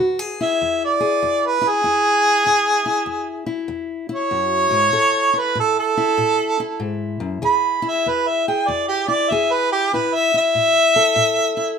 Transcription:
Already playing: steel-string acoustic guitar E2 F#4
0.19 steel-string acoustic guitar G#4
0.41 steel-string acoustic guitar E4, harmonica E5
0.61 steel-string acoustic guitar E2
0.85 harmonica D5
1.00 steel-string acoustic guitar G#4
1.23 steel-string acoustic guitar E2
1.46 harmonica B4
1.61 steel-string acoustic guitar E4
1.69 harmonica G#4
1.84 steel-string acoustic guitar E2 E4
2.46 steel-string acoustic guitar E2 E4
2.86 steel-string acoustic guitar E4
3.06 steel-string acoustic guitar E2
3.46 steel-string acoustic guitar E4
3.68 steel-string acoustic guitar E2
4.09 steel-string acoustic guitar E4
4.14 harmonica C#5
4.31 steel-string acoustic guitar F#2
4.71 steel-string acoustic guitar G#2
4.93 steel-string acoustic guitar A2 A4
5.33 steel-string acoustic guitar E4
5.39 harmonica B4
5.55 steel-string acoustic guitar A2
5.60 harmonica A4
5.79 harmonica A4
5.97 steel-string acoustic guitar E4
6.18 steel-string acoustic guitar A2
6.60 steel-string acoustic guitar E4
6.80 steel-string acoustic guitar G#2
7.20 steel-string acoustic guitar F#2
7.42 steel-string acoustic guitar E2 G#4, harmonica B5
7.82 steel-string acoustic guitar E4
7.89 harmonica E5
8.06 steel-string acoustic guitar E2, harmonica B4
8.28 harmonica E5
8.48 steel-string acoustic guitar G#4, harmonica G5
8.68 steel-string acoustic guitar E2, harmonica D5
8.88 harmonica G4
9.08 steel-string acoustic guitar E4, harmonica D5
9.30 steel-string acoustic guitar E2 G#4, harmonica E5
9.52 harmonica B4
9.72 harmonica G4
9.93 steel-string acoustic guitar A2 E4, harmonica B4
10.15 harmonica E5
10.34 steel-string acoustic guitar E4, harmonica E5
10.55 steel-string acoustic guitar A2
10.96 steel-string acoustic guitar A4
11.16 steel-string acoustic guitar A2
11.57 steel-string acoustic guitar E4

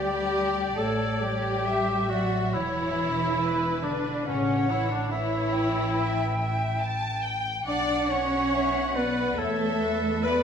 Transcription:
Already playing: double bass section D2, french horn section G3, cello section G3, violin section G4 D5, viola section G4, oboe G4, clarinet G4, flute D5
0.76 double bass section A1, cello section A3, french horn section A3, violin section A4, oboe A4, viola section A4, clarinet A4, flute C#5
1.21 french horn section G3, cello section G3, oboe G4, violin section G4, viola section G4, clarinet G4
1.65 violin section E5, flute E5
2.09 cello section F#3, french horn section F#3, viola section F#4, violin section F#4, oboe F#4, clarinet F#4, flute D5
2.52 double bass section E1, cello section E3, french horn section E3, violin section E4 C#5, oboe E4, viola section E4, clarinet E4, flute C#5
3.39 flute B4, violin section B4
3.82 french horn section D3, cello section D3, oboe D4, violin section D4 B4, clarinet D4, viola section D4, flute D5
4.26 double bass section A1, cello section C#3, french horn section C#3, oboe C#4, violin section C#4 C#5, viola section C#4, clarinet C#4, flute F#5
4.69 cello section E3, french horn section E3, viola section E4, violin section E4, clarinet E4, oboe E4
4.90 cello section D3, french horn section D3, viola section D4, oboe D4, clarinet D4, violin section D4
5.11 cello section E3, french horn section E3, viola section E4, clarinet E4, oboe E4, violin section E4 C#5, flute E5
5.53 flute G5
5.98 violin section E5
6.41 violin section E5
6.82 violin section A5
7.24 violin section G5
7.67 double bass section B1, cello section D4, french horn section D4, oboe D5, viola section D5, violin section D5 F#5, clarinet D5, flute F#5
8.10 cello section C#4, french horn section C#4, violin section C#5, oboe C#5, viola section C#5, clarinet C#5
8.52 flute E5
8.95 cello section B3, french horn section B3, clarinet B4, violin section B4, oboe B4, viola section B4, flute D5
9.38 double bass section E2, french horn section A3, cello section A3, violin section A4 E5, oboe A4, clarinet A4, viola section A4, flute C#5
9.81 flute B4
10.23 cello section B3, french horn section B3, violin section B4 D5, oboe B4, clarinet B4, viola section B4, flute D5

